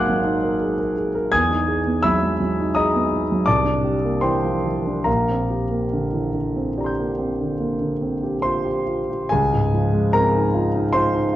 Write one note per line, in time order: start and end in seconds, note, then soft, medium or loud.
0.00 1.28 G#1 medium
0.00 0.09 F#3 soft
0.00 1.34 G#3 soft
0.00 1.34 A#3 medium
0.00 0.24 D#4 soft
0.00 0.44 A#4 medium
0.00 1.33 F5 medium
0.00 1.34 F#5 medium
0.00 1.33 G#5 medium
0.00 1.34 C6 medium
0.00 1.34 D6 medium
0.00 1.33 D#6 medium
0.00 1.34 F6 medium
0.00 1.34 F#6 medium
0.00 1.32 G#6 medium
0.00 1.33 C7 medium
0.09 0.37 F#3 soft
0.24 0.53 D#4 medium
0.44 0.72 A#4 soft
0.61 0.79 G#4 soft
0.79 1.07 A#4 soft
0.97 1.14 G#4 soft
1.15 1.32 A#4 medium
1.32 3.43 E2 medium
1.32 1.99 G#5 medium
1.32 1.99 D#6 medium
1.32 2.03 G#6 loud
1.50 1.78 D#4 medium
1.68 1.96 G#4 soft
1.87 2.15 B3 soft
2.03 2.32 F#3 soft
2.03 2.71 E5 medium
2.03 2.71 B5 medium
2.03 2.74 E6 loud
2.22 2.39 G#3 soft
2.40 2.68 F#3 soft
2.60 2.87 D#4 soft
2.75 3.04 G#4 soft
2.75 3.43 D#5 medium
2.75 3.42 A#5 medium
2.75 3.46 D#6 medium
2.95 3.22 B3 soft
3.13 3.40 D#4 soft
3.32 3.48 F#3 soft
3.46 5.03 C2 medium
3.46 4.20 D5 medium
3.46 4.20 A5 medium
3.46 4.23 D6 medium
3.65 3.95 D4 soft
3.84 4.15 G4 soft
4.04 4.36 A#3 soft
4.21 4.56 E3 soft
4.21 5.02 C5 medium
4.21 5.02 G5 medium
4.21 5.05 C6 medium
4.44 4.65 F3 soft
4.66 4.99 E3 soft
4.87 5.07 D4 soft
5.04 9.26 A#1 soft
5.04 8.82 A#4 soft
5.04 8.82 F5 medium
5.04 6.79 A#5 medium
5.29 5.63 C4 soft
5.50 5.84 G4 soft
5.71 6.05 A#3 soft
5.93 6.27 D3 soft
6.13 6.34 E3 soft
6.34 6.68 D3 soft
6.56 6.90 C4 soft
6.78 7.11 G4 soft
6.78 9.26 D5 soft
6.78 9.28 A#5 soft
6.84 8.41 C6 soft
6.84 9.30 G6 soft
6.99 7.32 A#3 soft
7.18 7.52 C4 soft
7.41 7.73 D3 soft
7.59 7.93 A#3 soft
7.81 8.14 D3 soft
8.01 8.35 C4 soft
8.23 8.56 G4 soft
8.42 8.65 F4 soft
8.42 9.26 C5 medium
8.42 9.29 C6 medium
8.65 9.00 G4 soft
8.86 9.08 F4 soft
9.10 9.31 G4 soft
9.29 11.36 C#2 medium
9.29 10.10 G#4 medium
9.29 10.13 G#5 medium
9.53 9.86 G#2 soft
9.74 10.06 F3 soft
9.93 10.25 G#3 soft
10.13 10.46 C4 medium
10.13 10.88 A#4 medium
10.13 10.92 A#5 medium
10.35 10.66 D#4 soft
10.54 10.85 F4 medium
10.76 11.05 D#4 medium
10.93 11.25 F4 medium
10.93 11.36 C5 medium
10.93 11.36 C6 medium
11.14 11.36 D#4 medium
11.33 11.36 F4 medium